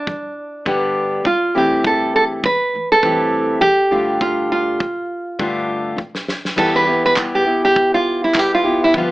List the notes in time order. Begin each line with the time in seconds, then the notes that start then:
Already playing: D4
0.06 G2 D3 G3, kick
0.65 G2 D3 G3 B3 D4 G4, kick
1.24 G2 D3 G3 F4, kick
1.55 G2 E3 A3 C4 E4 G4
1.84 A4, kick
2.16 A4
2.43 G2 E3 A3 B4, kick
2.73 G2 E3 A3
2.92 A4
3.03 G2 E3 A3 C4 E4 G4, kick
3.61 G2 E3 A3 G4, kick
3.91 G2 D3 A3 D4 F4 G4
4.21 F4, kick
4.52 F4
4.80 G2 D3 A3, kick
5.39 G2 D3 A3 D4 F4 G4, kick
5.97 G2 D3 A3, kick
6.15 snare
6.28 snare
6.45 snare
6.56 E3 G3 B3 E4 G4 A4, kick, crash
6.76 B4
6.86 B3 E4 G4
7.06 B4
7.16 G3 B3 E4 G4, kick, clap
7.35 G4
7.45 B3 E4 G4
7.65 G4
7.76 kick
7.94 F4
8.24 E4
8.34 G3 B3 E4 G4, kick, clap
8.39 G4
8.55 F4
8.64 B3 E4 G4
8.84 E4
8.93 G2 D3 F3 B3 F4 G4, kick
8.98 F4